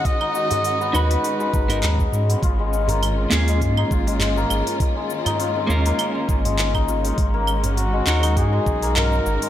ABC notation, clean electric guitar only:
X:1
M:4/4
L:1/16
Q:"Swing 16ths" 1/4=101
K:G#dor
V:1 name="Clean electric guitar"
[DFA]6 [DFb]4- [DFb] [B,DFA] z4 | z6 [A,CEG]8- [A,CEG]2- | [A,CEG]6 [A,CEA]8- [A,CEA]2 | z6 [DFA]8- [DFA]2 |]